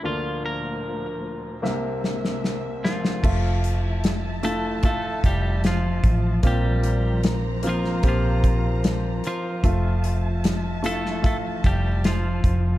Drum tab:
CC |----------------|x---------------|----------------|----------------|
HH |----------------|--x-x-x-x-x-x-x-|x-x-x-x-x-x-x-x-|x-x-x-x-x-x-x-x-|
SD |--------o-ooo-oo|----o-------o---|----o--o----o---|----o--o----o---|
BD |----------------|o-------o-o---o-|o-------o-o-----|o-------o-o---o-|